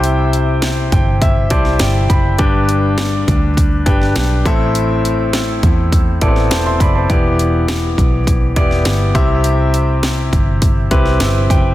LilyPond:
<<
  \new Staff \with { instrumentName = "Grand piano" } { \time 4/4 \key c \lydian \tempo 4 = 102 << { r4. g''8 e''8 a''8 g''8 b''8 | r1 | r2. <c'' a''>16 <e'' c'''>16 <d'' b''>16 <c'' a''>16~ | <c'' a''>16 r2. r8. |
r2. e''8 g''8 | } \\ { <e' g' c'' g''>4. r4 <e' g' c'' d''>4. | <d' g' b' g''>2 r8 <d' g' b' g''>4 <c' e' a' e''>8~ | <c' e' a' e''>4. r4 <b c' e' a' d''>4. | <b e' g' d''>2 r8 <b e' g' d''>4 <c' e' g' e''>8~ |
<c' e' g' e''>4. r4 <c' e' g' b'>4. | } >> }
  \new Staff \with { instrumentName = "Grand piano" } { \clef bass \time 4/4 \key c \lydian c4 r2. | g,4. r2 a,8~ | a,4 r2. | e4. r2 c8~ |
c4 r2. | }
  \new Staff \with { instrumentName = "Picked electric bass" } { \clef bass \time 4/4 \key c \lydian c,4. g,,4 c,8 g,,8 fis,,8 | g,,4. d,4 g,,8 b,,8 a,,8~ | a,,4. e,4 a,,8 e,,8 fis,,8 | e,,4. b,,4 e,,8 g,,8 c,8~ |
c,4. g,,4 c,8 g,,8 fis,,8 | }
  \new DrumStaff \with { instrumentName = "Drums" } \drummode { \time 4/4 hh8 hh8 <hh sn>8 <hh bd>8 <hh bd>8 <hh bd>16 sn16 <hh sn>8 <hh bd>8 | <hh bd>8 hh8 <hh sn>8 <hh bd>8 <hh bd>8 <hh bd>16 sn16 <hh sn>8 <hh bd>8 | hh8 hh8 <hh sn>8 <hh bd>8 <hh bd>8 <hh bd>16 sn16 <hh sn>8 <hh bd>8 | <hh bd>8 hh8 <hh sn>8 <hh bd>8 <hh bd>8 <hh bd>16 sn16 <hh sn>8 <hh bd>8 |
hh8 hh8 <hh sn>8 <hh bd>8 <hh bd>8 <hh bd>16 sn16 <hh sn>8 <hh bd>8 | }
>>